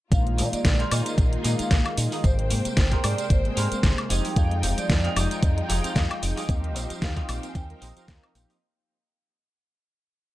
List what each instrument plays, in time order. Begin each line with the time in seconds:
0.11 fingered electric bass A#1, analog polysynth D#3 G#3 A#3 F4, synth arpeggio sound G#3, string section A#3 D#4 F4 G#4, vibraphone F5, kick, closed hi-hat, tambourine
0.26 synth arpeggio sound A#3, closed hi-hat
0.38 fingered electric bass A#2, synth arpeggio sound D#4, muted clean electric guitar stroke, open hi-hat, tambourine
0.45 vibraphone D#5
0.52 synth arpeggio sound G#3, vibraphone D5, muted clean electric guitar stroke, muted fingered electric bass stroke, closed hi-hat, tambourine
0.65 fingered electric bass A#1, synth arpeggio sound A#3, kick, snare, closed hi-hat, tambourine
0.79 synth arpeggio sound D#4, clean electric guitar F4 G#4 A#4 C5, closed hi-hat
0.91 fingered electric bass A#2, synth arpeggio sound G#3, vibraphone D#5, open hi-hat, tambourine, high woodblock
1.06 synth arpeggio sound A#3, closed hi-hat, tambourine
1.18 fingered electric bass A#1, synth arpeggio sound D#4, kick, closed hi-hat, tambourine
1.33 synth arpeggio sound G#3, closed hi-hat
1.44 fingered electric bass A#2, analog polysynth D#3 G#3 A#3 F4, synth arpeggio sound A#3, clean electric guitar F4 G#4 A#4 D#5, open hi-hat, tambourine
1.59 synth arpeggio sound D#4, vibraphone F5, muted fingered electric bass stroke, closed hi-hat, tambourine
1.71 fingered electric bass A#1, synth arpeggio sound G#3, kick, snare, closed hi-hat, tambourine
1.86 synth arpeggio sound A#3, closed hi-hat, high woodblock
1.98 fingered electric bass A#2, synth arpeggio sound D#4, vibraphone D#5, open hi-hat, tambourine
2.12 synth arpeggio sound G#3, clean electric guitar F4 G#4 A#4 D#5, open hi-hat, tambourine
2.23 fingered electric bass G#1, analog polysynth C3 G#3 A#3 G5, synth arpeggio sound G3, string section G#3 A#4 C5 G5, vibraphone C5, kick, closed hi-hat, tambourine
2.39 synth arpeggio sound G#3, closed hi-hat
2.50 fingered electric bass G#2, synth arpeggio sound A#3, muted clean electric guitar stroke, open hi-hat, tambourine
2.65 synth arpeggio sound G3, muted clean electric guitar stroke, muted fingered electric bass stroke, closed hi-hat, tambourine
2.77 fingered electric bass G#1, kick, snare, closed hi-hat, tambourine
2.91 synth arpeggio sound A#3, clean electric guitar G4 G#4 A#4 C5, kick, closed hi-hat
3.04 fingered electric bass G#2, synth arpeggio sound G3, vibraphone D5, open hi-hat, tambourine, high woodblock
3.18 synth arpeggio sound G#3, closed hi-hat, tambourine
3.30 fingered electric bass G#1, synth arpeggio sound A#3, vibraphone C5, kick, closed hi-hat, tambourine
3.45 analog polysynth C3 G#3 A#3 G#4, synth arpeggio sound G3, closed hi-hat
3.56 fingered electric bass G#2, synth arpeggio sound G#3, clean electric guitar G4 G#4 A#4 C5, open hi-hat, tambourine
3.71 analog polysynth C3 G#3 A#3, synth arpeggio sound A#3, muted fingered electric bass stroke, closed hi-hat, tambourine
3.83 fingered electric bass G#1, kick, snare, closed hi-hat, tambourine
3.98 synth arpeggio sound G#3, closed hi-hat, high woodblock
4.09 fingered electric bass F1, analog polysynth F3 G#3 D#4 G4, string section G#3 D#4 F4, synth arpeggio sound C4, clean electric guitar F4 G4 G#4 D#5, open hi-hat, tambourine
4.25 synth arpeggio sound G3, open hi-hat, tambourine
4.31 vibraphone G5
4.36 fingered electric bass F2, analog polysynth F3 G#3 D#4 G5, synth arpeggio sound G3, vibraphone F5, kick, closed hi-hat, tambourine
4.51 synth arpeggio sound G#3, closed hi-hat
4.62 fingered electric bass F1, synth arpeggio sound C4, muted clean electric guitar stroke, open hi-hat, tambourine
4.77 synth arpeggio sound G3, vibraphone D5, muted clean electric guitar stroke, muted fingered electric bass stroke, closed hi-hat, tambourine
4.90 fingered electric bass F2, synth arpeggio sound G#3, kick, snare, closed hi-hat, tambourine
5.04 synth arpeggio sound C4, clean electric guitar F4 G4 G#4 D#5, closed hi-hat
5.16 fingered electric bass F1, synth arpeggio sound G3, vibraphone D#5, open hi-hat, tambourine, high woodblock
5.31 synth arpeggio sound G#3, closed hi-hat, tambourine
5.43 fingered electric bass F2, synth arpeggio sound C4, kick, closed hi-hat, tambourine
5.58 synth arpeggio sound G3, closed hi-hat
5.68 fingered electric bass F1, analog polysynth F3 G#3 D#4 G5, synth arpeggio sound G#3, clean electric guitar F4 G4 G#4 D#5, open hi-hat, tambourine
5.84 synth arpeggio sound C4, vibraphone F5, muted fingered electric bass stroke, closed hi-hat, tambourine
5.96 fingered electric bass F2, synth arpeggio sound G3, kick, snare, closed hi-hat, tambourine
6.11 synth arpeggio sound G#3, closed hi-hat, high woodblock
6.22 fingered electric bass F1, synth arpeggio sound C4, vibraphone D#5, open hi-hat, tambourine
6.36 synth arpeggio sound G3, clean electric guitar F4 G4 G#4 D#5, open hi-hat, tambourine
6.49 fingered electric bass D#2, synth arpeggio sound G3, analog polysynth C4 D#4 G4, string section D#4 C5 F5 G5, kick, closed hi-hat, tambourine
6.64 synth arpeggio sound A#3, closed hi-hat
6.75 fingered electric bass A#1, synth arpeggio sound C4, muted clean electric guitar stroke, open hi-hat, tambourine
6.89 synth arpeggio sound G3, muted clean electric guitar stroke, muted fingered electric bass stroke, closed hi-hat, tambourine
7.02 fingered electric bass D#2, synth arpeggio sound A#3, vibraphone F5, kick, snare, closed hi-hat, tambourine
7.16 synth arpeggio sound C4, clean electric guitar F4 G4 C5 D#5, kick, closed hi-hat
7.29 fingered electric bass A#1, synth arpeggio sound G3, open hi-hat, tambourine, high woodblock
7.43 synth arpeggio sound A#3, closed hi-hat, tambourine
7.49 vibraphone G#5
7.55 fingered electric bass D#2, synth arpeggio sound C4, vibraphone G5, kick, closed hi-hat, tambourine
7.69 analog polysynth F3 C4 D#4 A#4, synth arpeggio sound G3, closed hi-hat
7.81 fingered electric bass A#1, clean electric guitar F4 G4 C5 D#5, synth arpeggio sound G4, open hi-hat, tambourine
7.96 analog polysynth F3 C4 D#4 A#4, synth arpeggio sound G4, muted fingered electric bass stroke, closed hi-hat, tambourine
8.08 fingered electric bass D#2, synth arpeggio sound C4, clean electric guitar D#5, vibraphone F5, kick, snare, closed hi-hat, tambourine
8.23 synth arpeggio sound C4, closed hi-hat, high woodblock
8.35 fingered electric bass A#1, analog polysynth F3 C4 D#4 G4, synth arpeggio sound A#3, clean electric guitar G5, open hi-hat, tambourine
8.49 synth arpeggio sound A#3, clean electric guitar F4 G4 C5 D#5, open hi-hat, tambourine